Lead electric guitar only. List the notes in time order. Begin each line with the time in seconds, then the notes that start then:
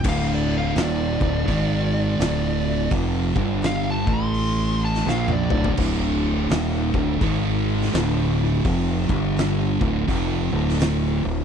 0.09 F5
0.35 D5
0.58 F5
0.83 D5
3.66 F5
3.91 A5
4.13 C6
4.85 A5
5.09 F5
5.32 D5